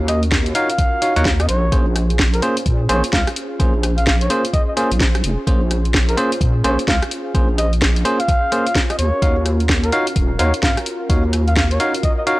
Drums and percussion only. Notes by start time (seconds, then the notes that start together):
0.08 cross-stick, open hi-hat
0.23 closed hi-hat
0.32 kick, snare
0.46 open hi-hat
0.55 open hi-hat
0.70 closed hi-hat
0.78 kick, closed hi-hat
1.02 open hi-hat
1.16 closed hi-hat
1.25 kick, snare
1.40 cross-stick, closed hi-hat
1.49 open hi-hat
1.72 kick, closed hi-hat
1.96 cross-stick, open hi-hat
2.10 closed hi-hat
2.19 kick, snare
2.34 open hi-hat
2.42 open hi-hat
2.57 closed hi-hat
2.66 kick, closed hi-hat
2.89 open hi-hat
3.04 closed hi-hat
3.13 kick, snare
3.27 cross-stick, closed hi-hat
3.36 open hi-hat
3.60 kick, closed hi-hat
3.83 cross-stick, open hi-hat
3.98 closed hi-hat
4.07 kick, snare
4.21 open hi-hat
4.30 open hi-hat
4.45 closed hi-hat
4.53 kick, closed hi-hat
4.77 open hi-hat
4.92 closed hi-hat
5.00 kick, snare
5.15 cross-stick, closed hi-hat
5.24 open hi-hat
5.47 kick, closed hi-hat
5.71 cross-stick, open hi-hat
5.85 closed hi-hat
5.94 kick, snare
6.09 open hi-hat
6.18 open hi-hat
6.32 closed hi-hat
6.41 kick, closed hi-hat
6.64 open hi-hat
6.79 closed hi-hat
6.88 kick, snare
7.02 cross-stick, closed hi-hat
7.11 open hi-hat
7.35 kick, closed hi-hat
7.58 cross-stick, open hi-hat
7.73 closed hi-hat
7.81 kick, snare
7.96 open hi-hat
8.05 open hi-hat
8.20 closed hi-hat
8.28 kick, closed hi-hat
8.52 open hi-hat
8.67 closed hi-hat
8.75 kick, snare
8.90 cross-stick, closed hi-hat
8.99 open hi-hat
9.22 kick, closed hi-hat
9.46 cross-stick, open hi-hat
9.60 closed hi-hat
9.69 kick, snare
9.84 open hi-hat
9.92 open hi-hat
10.07 closed hi-hat
10.16 kick, closed hi-hat
10.39 open hi-hat
10.54 closed hi-hat
10.63 kick, snare
10.77 cross-stick, closed hi-hat
10.86 open hi-hat
11.10 kick, closed hi-hat
11.33 cross-stick, open hi-hat
11.48 closed hi-hat
11.56 kick, snare
11.71 open hi-hat
11.80 open hi-hat
11.94 closed hi-hat
12.03 kick, closed hi-hat
12.27 open hi-hat